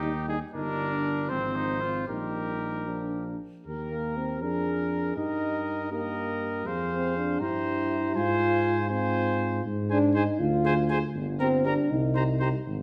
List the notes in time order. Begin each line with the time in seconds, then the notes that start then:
Already playing: D#2 D#4 G4
0.03 G3 D#4
0.27 G3 D#4 G#4
0.53 G1 G3 D4 D#4 A#4
0.91 D4
1.29 G#1 F3 C4 C5
1.56 D#4
1.81 F4
2.08 A#1 G3 D#4 G4 A#4
2.87 F3 D4
3.66 D#2 G4 A#4
3.91 A#3
4.17 C4
4.41 F2 D4 G#4 A#4
5.16 G2 D#4 G4 A#4 D#5
5.91 A#3 G4 A#4 D#5
6.66 F2 G#4 C5 F5
6.92 C4
7.17 D4
7.40 G2 E4 G4 C5 A#5
8.15 G#2 F4 C5 G#5
8.89 C4 F4 C5 G#5
9.65 G#2
9.89 D4 G#4 C5 G#5
10.14 D#4 G#4 C5 G#5
10.39 D2 F4
10.65 G#4 C5 G#5
10.90 G#4 C5 G#5
11.15 G1
11.39 C4 G4 A#4 A#5
11.65 D4 G4 A#4 A#5
11.90 C2 D#4
12.15 G4 C5 A#5
12.40 G4 C5 A#5
12.66 G#1